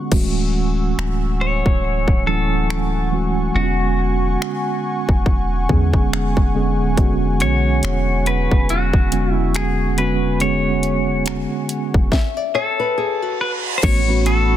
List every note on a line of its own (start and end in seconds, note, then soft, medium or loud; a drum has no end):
0.11 0.94 D1 loud
0.11 1.26 E3 medium
0.11 1.27 G#3 medium
0.11 1.27 A3 medium
0.11 1.27 C#4 medium
0.11 1.27 F#4 medium
0.11 12.08 F#5 medium
0.11 12.08 G#5 medium
0.11 12.08 C#6 medium
0.11 3.51 E6 medium
0.11 kick loud
0.11 crash medium
0.98 1.63 D1 loud
0.98 finger snap loud
1.41 2.23 C#5 loud
1.66 2.07 D1 loud
1.66 kick medium
2.08 3.51 D1 loud
2.08 kick medium
2.26 2.84 E3 medium
2.26 2.84 F#3 medium
2.26 2.85 A3 medium
2.26 2.85 C#4 medium
2.26 2.85 E4 medium
2.26 3.08 A4 medium
2.70 finger snap loud
3.11 3.42 E3 medium
3.11 3.42 G#3 medium
3.11 3.43 A3 medium
3.11 3.43 C#4 medium
3.11 3.43 F#4 medium
3.54 4.37 E1 loud
3.54 4.69 D3 medium
3.54 4.69 G#3 medium
3.54 4.70 B3 medium
3.54 4.70 C#4 medium
3.54 3.63 F4 medium
3.54 6.08 F#4 loud
3.63 4.74 F#4 medium
4.42 finger snap loud
5.09 5.26 E1 loud
5.09 kick medium
5.26 5.67 E1 loud
5.26 kick medium
5.69 5.93 E2 loud
5.69 6.27 D3 medium
5.69 6.27 G#3 medium
5.69 6.27 B3 medium
5.69 6.28 C#4 medium
5.69 6.28 G#4 medium
5.69 kick medium
5.94 6.35 E1 medium
5.94 kick medium
6.13 finger snap loud
6.37 6.81 E1 medium
6.37 kick medium
6.54 6.85 D3 medium
6.54 6.85 G#3 medium
6.54 6.85 B3 medium
6.54 6.86 C#4 medium
6.54 6.86 G#4 medium
6.80 6.97 D1 medium
6.97 7.42 E1 loud
6.97 8.12 D3 medium
6.97 8.12 G#3 medium
6.97 8.12 B3 medium
6.97 8.13 C#4 medium
6.97 8.13 F#4 medium
6.97 kick loud
6.97 closed hi-hat medium
7.40 7.81 B1 loud
7.40 8.27 C#5 loud
7.40 closed hi-hat medium
7.83 8.48 E1 loud
7.83 finger snap loud
7.83 closed hi-hat medium
8.26 8.71 B4 medium
8.26 closed hi-hat medium
8.51 8.92 E1 loud
8.51 kick medium
8.69 9.33 F#4 medium
8.69 closed hi-hat medium
8.93 11.47 E1 loud
8.93 kick medium
9.11 9.70 D3 medium
9.11 9.70 G#3 medium
9.11 9.70 B3 medium
9.11 9.71 C#4 medium
9.11 9.71 F#4 medium
9.11 closed hi-hat medium
9.33 9.55 E4 medium
9.55 9.99 G#4 medium
9.55 finger snap loud
9.55 closed hi-hat medium
9.97 10.28 D3 medium
9.97 10.28 G#3 medium
9.97 10.28 B3 medium
9.97 10.29 C#4 medium
9.97 10.29 F#4 medium
9.97 10.41 B4 medium
9.97 closed hi-hat medium
10.40 11.55 D3 medium
10.40 11.55 G#3 medium
10.40 11.55 B3 medium
10.40 11.56 C#4 medium
10.40 11.56 G#4 medium
10.40 11.23 C#5 medium
10.40 closed hi-hat medium
10.83 closed hi-hat medium
11.26 finger snap loud
11.26 closed hi-hat medium
11.69 closed hi-hat medium
11.94 12.11 E1 loud
11.94 kick loud
12.12 12.37 E5 medium
12.12 kick loud
12.12 snare medium
12.12 reverse cymbal medium
12.37 12.54 D5 medium
12.55 13.41 A4 medium
12.55 12.78 C#5 medium
12.80 12.97 B4 medium
12.98 13.22 G#4 medium
13.22 13.80 F#4 medium
13.41 13.51 B4 medium
13.78 13.83 C5 medium
13.83 14.57 A1 loud
13.83 13.99 E3 medium
13.83 13.99 A3 medium
13.83 14.00 B3 medium
13.83 14.00 C#4 medium
13.83 14.57 F#4 medium
13.83 14.00 F#4 medium
13.83 14.26 C#5 loud
13.83 14.57 F#5 medium
13.83 14.57 B5 medium
13.83 14.57 C#6 medium
13.83 kick loud
13.83 closed hi-hat medium
13.83 crash medium
14.08 14.57 E3 medium
14.08 14.57 A3 medium
14.08 14.57 B3 medium
14.08 14.57 C#4 medium
14.08 14.57 F#4 medium
14.26 14.57 A4 loud
14.26 closed hi-hat medium